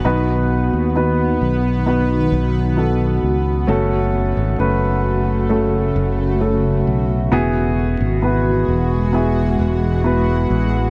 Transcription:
<<
  \new Staff \with { instrumentName = "Upright piano" } { \time 4/4 \key b \mixolydian \tempo 4 = 66 <b dis' fis' b'>4 <b dis' fis' b'>4 <b dis' fis' b'>4 <b dis' fis' a'>4 | <a cis' fis' a'>4 <a cis' fis' b'>4 <a cis' fis' a'>4 <a cis' fis' a'>4 | <b e' fis' gis'>4 <b e' fis' b'>4 <b e' fis' gis'>4 <b e' fis' b'>4 | }
  \new Staff \with { instrumentName = "Upright piano" } { \clef bass \time 4/4 \key b \mixolydian r1 | cis4. r2 r8 | b,4. r2 r8 | }
  \new Staff \with { instrumentName = "Ambient pad" } { \clef bass \time 4/4 \key b \mixolydian << { fis'1~ | fis'1~ | fis'1 | } \\ { <dis b>1 | <cis a>1 | <e gis>1 | } >> }
  \new Staff \with { instrumentName = "Fretless electric bass" } { \clef bass \time 4/4 \key b \mixolydian b,,8. dis,8. b,,4 b,,4 cis,8 | fis,,8. gis,,16 fis,,4. fis,,4 b,,8 | e,,8. gis,,8. e,,4 e,,4 a,,8 | }
>>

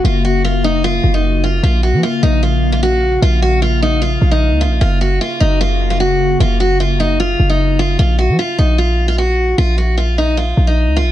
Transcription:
<<
  \new Staff \with { instrumentName = "Steel-string acoustic guitar" } { \time 4/4 \key bes \minor \tempo 4 = 151 f'8 ges'8 f'8 ees'8 f'8. ees'8. f'8 | f'8 ges'8 f'8 ees'8 f'8. f'16 ges'4 | f'8 ges'8 f'8 ees'8 f'8. ees'8. f'8 | f'8 ges'8 f'8 ees'8 f'8. f'16 ges'4 |
f'8 ges'8 f'8 ees'8 f'8. ees'8. f'8 | f'8 ges'8 f'8 ees'8 f'8. f'16 ges'4 | f'8 ges'8 f'8 ees'8 f'8. ees'8. f'8 | }
  \new Staff \with { instrumentName = "Ambient pad" } { \time 4/4 \key bes \minor << { ges'1 | f''1~ | f''1 | ges'1~ |
ges'1 | r1 | r1 | } \\ { <des bes>1~ | <des bes>1~ | <des bes>1 | <des bes>1~ |
<des bes>1 | r1 | r1 | } >> }
  \new Staff \with { instrumentName = "808-style bass" } { \clef bass \time 4/4 \key bes \minor ges,,2~ ges,,8 ges,,4. | bes,,8. f16 r8 bes,,2~ bes,,8 | bes,,2~ bes,,8 bes,,8. des,16. bes,,16. | ges,,4 r8 ges,,2~ ges,,8 |
ges,,2~ ges,,8 ges,,4. | bes,,8. f16 r8 bes,,2~ bes,,8 | bes,,2~ bes,,8 bes,,8. des,16. bes,,16. | }
>>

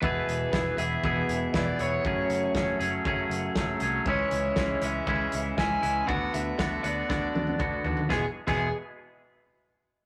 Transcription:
<<
  \new Staff \with { instrumentName = "Overdriven electric guitar" } { \time 4/4 \key e \mixolydian \tempo 4 = 119 b'4. e''4. d''8 cis''8~ | cis''4. r2 r8 | cis''4. e''4. gis''4 | fis''8 e''4 d''2 r8 |
gis'16 r8 gis'8 r2 r8. | }
  \new Staff \with { instrumentName = "Clean electric guitar" } { \time 4/4 \key e \mixolydian <e, b, e b e' gis'>4 <e b e' gis'>8 <e b e' gis'>8 <e, b, e b e' gis'>4 <e b e' gis'>8 <e b e' gis'>8 | <fis, cis fis a cis' gis'>4 <fis a cis' gis'>8 <fis a cis' gis'>8 <fis, cis fis a cis' gis'>4 <fis a cis' gis'>8 <fis a cis' gis'>8 | <cis e gis cis' e'>4 <e gis cis' e'>8 <gis cis' e'>8 <cis e gis cis' e'>4 <e gis cis' e'>8 <gis cis' e'>8 | <d b d' fis'>4 <d b d' fis'>8 <b d' fis'>8 <d b d' fis'>4 <d b d' fis'>8 <b d' fis'>8 |
<e, b, e gis b gis'>16 r8 <e, b, e gis b gis'>8 r2 r8. | }
  \new Staff \with { instrumentName = "Picked electric bass" } { \clef bass \time 4/4 \key e \mixolydian e,,8 e,,8 e,,8 e,,8 e,,8 e,,8 e,,8 e,,8 | fis,,8 fis,,8 fis,,8 fis,,8 fis,,8 fis,,8 fis,,8 c,8 | cis,8 cis,8 cis,8 cis,8 cis,8 cis,8 cis,8 cis,8 | d,8 d,8 d,8 d,8 d,8 d,8 d,8 dis,8 |
e,,16 r8 e,,8 r2 r8. | }
  \new DrumStaff \with { instrumentName = "Drums" } \drummode { \time 4/4 bd8 hh8 <bd sn>8 hh8 bd8 hh8 <bd sn>8 hh8 | bd8 hh8 <bd sn>8 hh8 bd8 hh8 <bd sn>8 hh8 | bd8 hh8 <bd sn>8 hh8 bd8 hh8 <bd sn>8 hh8 | bd8 hh8 <bd sn>8 hh8 <bd sn>8 tommh16 tommh16 <bd toml>8 tomfh16 tomfh16 |
<bd sn>8. <cymc bd>16 r4 r4 r4 | }
>>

